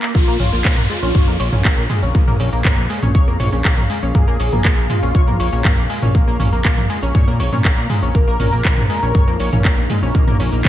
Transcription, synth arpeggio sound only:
0.03 A#3
0.15 A#3 A#4
0.28 A#3 A#4
0.40 C#4 C#5
0.53 A#3 A#4
0.65 A#3 A#4
0.78 A#3 A#4
0.90 G#3 G#4
1.03 C#4 C#5
1.15 C#5 C#6
1.28 A#3 A#4
1.40 C#5 C#6
1.53 C#4 C#5
1.65 A#3 A#4
1.78 A#3 A#4
1.90 G#3 G#4
2.03 C#4 C#5
2.15 A#3 A#4
2.28 A#3 A#4
2.40 C#4 C#5
2.53 A#3 A#4
2.65 A#3 A#4
2.78 A#3 A#4
2.90 G#3 G#4
3.03 C#4 C#5
3.15 C#5 C#6
3.28 A#3 A#4
3.40 C#5 C#6
3.53 C#4 C#5
3.65 A#3 A#4
3.78 A#3 A#4
3.90 G#3 G#4
4.03 C#4 C#5
4.15 A#3 A#4
4.28 A#3 A#4
4.40 C#4 C#5
4.53 A#3 A#4
4.65 A#3 A#4
4.78 A#3 A#4
4.90 G#3 G#4
5.03 C#4 C#5
5.15 C#5 C#6
5.28 A#3 A#4
5.40 C#5 C#6
5.53 C#4 C#5
5.65 A#3 A#4
5.78 A#3 A#4
5.90 G#3 G#4
6.03 C#4 C#5
6.15 A#3 A#4
6.27 A#3 A#4
6.40 C#4 C#5
6.53 A#3 A#4
6.65 A#3 A#4
6.78 A#3 A#4
6.90 G#3 G#4
7.03 C#4 C#5
7.15 C#5 C#6
7.28 A#3 A#4
7.40 C#5 C#6
7.53 C#4 C#5
7.65 A#3 A#4
7.78 A#3 A#4
7.90 G#3 G#4
8.03 C#4 C#5
8.15 A#3 A#4
8.28 A#3 A#4
8.40 C#4 C#5
8.53 A#3 A#4
8.65 A#3 A#4
8.78 A#3 A#4
8.90 G#3 G#4
9.03 C#4 C#5
9.15 C#5 C#6
9.28 A#3 A#4
9.40 C#5 C#6
9.53 C#4 C#5
9.65 A#3 A#4
9.78 A#3 A#4
9.90 G#3 G#4
10.03 C#4 C#5
10.15 A#3 A#4
10.28 A#3 A#4
10.40 C#4 C#5
10.52 A#3 A#4
10.65 A#3 A#4

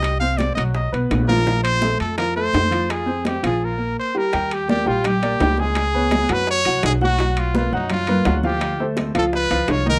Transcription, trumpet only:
Already playing: D#5
0.20 F5
0.38 D5
0.55 D#5
0.75 D#5
1.29 A#4
1.64 C5
2.00 A4
2.19 A#4
2.36 C5
2.91 G#4
3.28 G4
3.46 G#4
3.65 A#4
4.00 C5
4.18 A#4
4.54 G4
4.70 G4
4.88 F4
5.07 G4
5.60 G#4
6.33 B4
6.51 C#5
6.86 G#4
7.04 F#4
7.40 F4
7.57 F4
7.75 D#4
7.92 F4
8.47 G4
9.18 A4
9.36 B4
9.71 C#5
9.90 A#4

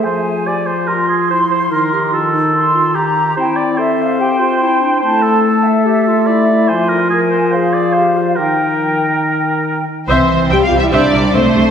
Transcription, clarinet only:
Already playing: G#4
0.46 G4
0.88 F4
1.30 E4
1.71 D#4
1.93 G4
2.14 F4
2.34 D#4
2.54 D#4
2.75 F4
2.96 G4
3.38 E4
3.79 A4
4.20 G4
4.40 F4
4.61 E4
4.81 D4
5.02 E4
5.45 A4
5.86 G4
6.08 F4
6.28 E4
6.50 E4
6.72 F4
7.14 A#4
7.56 G#4
7.98 G4
8.17 F4
8.40 D#4

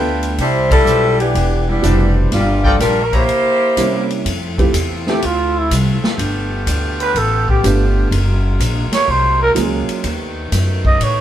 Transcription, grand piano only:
Already playing: A3 B3 D4 F4
1.82 B2 G3 D4 E4
3.77 C3 G3 A#3 C#4 E4
4.58 A3 C4 E4 F4 G4
5.07 A3 C4 E4 F4 A4
7.63 A3 B3 D4 F4 G4
9.55 F#3 A#3 C#4 F4 G#4

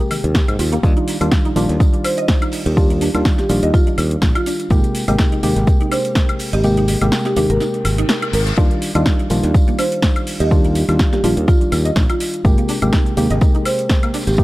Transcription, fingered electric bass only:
0.24 D#2
0.48 G#2
0.59 D#2
0.83 D#2
1.21 D#2
1.56 A#1
1.69 D#2
2.66 D#2
3.15 D#2
3.50 A#1
3.63 D#2
3.98 D#2
4.22 A#1
4.71 G#1
5.08 G#1
5.43 D#2
5.56 G#1
6.53 G#1
7.02 G#1
7.37 D#2
7.50 G#1
7.85 G#1
8.33 G#1
8.58 D#2
8.95 D#2
9.30 A#1
9.44 D#2
10.40 D#2
10.89 D#2
11.24 A#1
11.37 D#2
11.72 D#2
11.96 A#1
12.45 G#1
12.82 G#1
13.17 D#2
13.30 G#1
14.27 G#1

